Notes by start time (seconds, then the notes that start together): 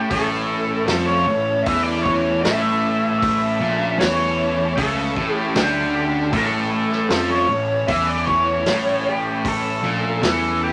Already playing: A3 C#4 E4 G4 A4
0.10 A1 A2 A4, kick, open hi-hat
0.86 F2 F3 A4, snare, open hi-hat
1.06 C#5
1.27 A1 A2
1.64 E2 E5, kick, open hi-hat
1.68 E3
1.83 D5
2.03 C#5, kick
2.42 A1 A2 E5, snare, open hi-hat
3.19 E5, kick, open hi-hat
3.60 A#1 A#2
3.99 E2 E3 C#5, snare, open hi-hat
4.77 C#2 C#3 A4, kick, open hi-hat
5.16 A1 A2, kick
5.36 G4
5.55 D2 D3 G4, snare, open hi-hat
5.95 G4
6.32 A1 A2 A4, kick, open hi-hat
6.38 A#4
6.46 A4
6.92 snare
7.09 F2 F3 A4, snare, open hi-hat
7.30 C#5
7.48 A1 A2
7.87 E2 E3 E5, kick, open hi-hat
8.07 D5
8.27 C#5, kick
8.66 A1 A2, snare, open hi-hat
9.09 G4
9.45 A4, kick, open hi-hat
9.82 A#1 A#2
10.22 E2 E3 A4, snare, open hi-hat
10.64 G4